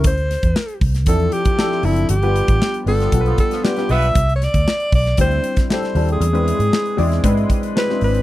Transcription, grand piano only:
\new Staff \with { instrumentName = "Grand piano" } { \time 4/4 \key c \major \tempo 4 = 117 r2 <f c' d' e' a'>8. r16 <f c' d' e' a'>16 r16 <f c' d' e' a'>8 | r16 <g b d' f' b'>4 r16 <g b d' f' b'>16 r16 <g b d' f' a' b'>8. r16 <g b d' f' b'>16 <g b d' f' b'>8. | r2 <g c' d' e' c''>8. r16 <g c' d' e' a'>16 r16 <g c' d' e' a'>8 | r16 <gis c' d' e' b'>4 r16 <gis c' d' e' d''>16 r16 <gis c' d' e' b'>8. r16 <gis c' d' e' c''>16 <gis c' d' e' c''>8. | }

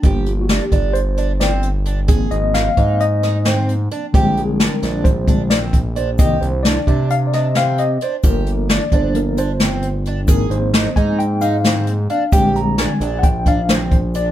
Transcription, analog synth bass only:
\new Staff \with { instrumentName = "Analog synth bass" } { \clef bass \time 9/8 \key g \phrygian \tempo 4. = 88 g,,4. g,,2. | aes,,8 aes,,4 aes,2. | bes,,4. bes,,2. | c,8 c,4 c2. |
g,,4. g,,2. | aes,,8 aes,,4 aes,2. | bes,,4. bes,,2. | }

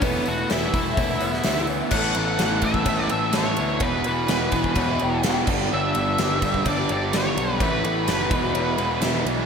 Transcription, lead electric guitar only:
\new Staff \with { instrumentName = "Lead electric guitar" } { \time 4/4 \key e \mixolydian \tempo 4 = 127 b8 fis'8 e'2~ e'8 r8 | fis''4. e''4 e''8 cis''4 | b'2. r4 | e''2 d''8 d''8 cis''4 |
b'2. r4 | }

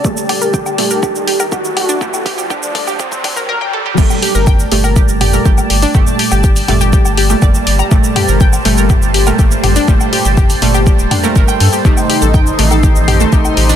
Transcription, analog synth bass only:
\new Staff \with { instrumentName = "Analog synth bass" } { \clef bass \time 4/4 \key g \minor \tempo 4 = 122 r1 | r1 | g,,16 r8 g,,8 r16 g,,8 r16 g,,8 r16 g,,16 r16 g,,16 r16 | g,,16 r8 g,,8 r16 g,,8 r16 g,,8 r16 g,,16 r16 g,,16 r16 |
g,,16 r8 g,,8 r16 g,,8 r16 g,,8 r16 g,,16 r16 g,,16 r16 | g,,16 r8 g,,8 r16 g,,8 r16 d,,16 r8 g,,16 r16 g,16 r16 | a,,16 r8 a,,8 r16 a,,8 r16 a,,8 r16 a,,16 r16 a,,16 r16 | }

